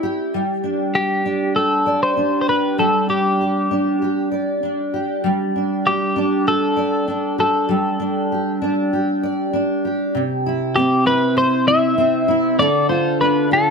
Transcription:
0.00 0.34 C4 medium
0.00 0.41 E4 medium
0.00 0.94 G4 medium
0.00 1.86 D5 medium
0.34 2.78 G3 medium
0.64 1.24 D4 medium
0.95 1.56 G4 soft
0.95 1.52 G4 medium
1.25 2.16 D4 medium
1.56 2.48 G4 medium
1.56 2.03 A4 medium
1.86 4.30 D5 medium
2.03 2.40 C5 medium
2.17 3.08 D4 medium
2.41 2.48 C5 medium
2.48 3.40 G4 soft
2.48 2.79 B4 medium
2.78 5.23 G3 medium
2.78 3.09 A4 medium
3.09 3.70 D4 medium
3.09 4.28 G4 medium
3.41 4.02 G4 medium
3.71 4.62 D4 medium
4.02 4.93 G4 medium
4.31 6.75 D5 medium
4.63 5.55 D4 medium
4.94 5.86 G4 medium
5.24 7.68 G3 medium
5.56 6.15 D4 medium
5.86 6.46 G4 medium
5.86 6.48 G4 medium
6.16 7.06 D4 medium
6.47 7.38 G4 medium
6.47 7.35 A4 loud
6.76 9.22 D5 medium
7.08 7.98 D4 medium
7.38 8.32 G4 medium
7.38 9.50 A4 medium
7.69 11.19 G3 medium
8.00 8.60 D4 medium
8.32 8.93 G4 medium
8.62 9.52 D4 medium
8.93 9.84 G4 medium
9.23 10.21 D5 medium
9.53 10.21 D4 medium
9.85 10.46 G4 medium
10.15 12.59 C3 medium
10.46 11.05 E4 medium
10.76 11.97 C4 medium
10.76 11.06 G4 medium
11.06 11.66 E4 medium
11.06 11.37 B4 loud
11.37 12.59 C5 medium
11.37 11.67 C5 loud
11.68 12.27 E4 medium
11.68 12.55 E5 loud
11.98 12.66 C4 medium
12.28 12.66 E4 medium
12.59 13.70 D3 medium
12.59 13.70 A4 medium
12.59 12.89 D5 loud
12.89 13.50 F4 medium
12.89 13.18 C5 medium
13.21 13.70 D4 medium
13.21 13.49 B4 medium
13.51 13.70 F4 medium
13.51 13.70 A4 loud

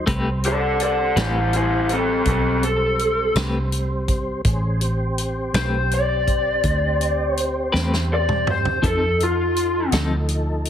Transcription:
0.06 1.14 C2 medium
0.06 4.42 G3 medium
0.06 0.29 A3 medium
0.06 0.29 C4 medium
0.06 4.42 C4 medium
0.06 0.29 G4 medium
0.06 0.30 B4 medium
0.06 4.41 C5 medium
0.06 kick loud
0.06 closed hi-hat medium
0.44 0.81 A4 medium
0.44 0.81 D5 medium
0.44 closed hi-hat medium
0.80 1.16 A4 medium
0.80 closed hi-hat medium
0.85 1.18 D5 medium
1.16 2.23 A1 medium
1.16 1.39 A3 soft
1.16 1.39 C4 medium
1.16 1.52 E4 medium
1.16 1.39 G4 medium
1.16 1.38 B4 medium
1.16 snare loud
1.16 closed hi-hat medium
1.21 1.54 C5 medium
1.53 1.89 E4 medium
1.53 1.90 C5 medium
1.53 closed hi-hat medium
1.89 2.25 C4 medium
1.89 closed hi-hat medium
1.93 2.27 A4 medium
2.25 3.32 B1 medium
2.25 2.62 C4 medium
2.25 kick loud
2.25 closed hi-hat medium
2.30 2.63 A4 medium
2.63 3.34 A4 medium
2.63 closed hi-hat medium
2.99 closed hi-hat medium
3.35 4.42 C2 medium
3.35 3.58 A3 medium
3.35 3.58 C4 medium
3.35 3.58 G4 medium
3.35 3.58 B4 medium
3.35 snare loud
3.35 closed hi-hat medium
3.72 closed hi-hat medium
4.08 kick medium
4.08 closed hi-hat medium
4.45 5.51 A1 medium
4.45 4.82 C#4 medium
4.45 4.82 G#4 medium
4.45 4.81 C5 medium
4.45 kick loud
4.45 closed hi-hat medium
4.81 8.80 C4 medium
4.81 8.79 G4 medium
4.81 8.79 C5 medium
4.81 closed hi-hat medium
5.18 closed hi-hat medium
5.54 6.60 B1 medium
5.54 5.77 A3 soft
5.54 5.77 C4 soft
5.54 5.77 G4 medium
5.54 5.77 B4 medium
5.54 5.90 C5 medium
5.54 snare loud
5.54 closed hi-hat medium
5.91 7.36 D5 medium
5.91 closed hi-hat medium
6.28 kick medium
6.28 closed hi-hat medium
6.63 7.70 D2 medium
6.63 kick loud
6.63 closed hi-hat medium
7.01 closed hi-hat medium
7.36 8.07 C5 medium
7.36 closed hi-hat medium
7.72 8.80 E2 medium
7.72 7.96 A3 medium
7.72 7.96 C4 medium
7.72 7.95 G4 medium
7.72 7.95 B4 medium
7.72 snare medium
7.94 snare medium
8.14 8.47 D5 medium
8.29 mid tom medium
8.47 8.84 C5 medium
8.47 mid tom medium
8.65 floor tom medium
8.82 9.90 F2 medium
8.82 9.04 F3 medium
8.82 10.70 F3 medium
8.82 9.05 C4 medium
8.82 9.05 D#4 medium
8.82 10.70 D#4 medium
8.82 9.05 A4 medium
8.82 10.70 A4 medium
8.82 9.20 A4 medium
8.82 kick loud
8.82 closed hi-hat medium
9.20 9.92 F4 medium
9.20 closed hi-hat medium
9.56 closed hi-hat medium
9.92 10.70 D2 medium
9.92 10.15 F3 soft
9.92 10.15 C4 medium
9.92 10.15 D#4 soft
9.92 10.15 A4 medium
9.92 snare loud
9.92 closed hi-hat medium
10.29 closed hi-hat medium
10.65 closed hi-hat medium

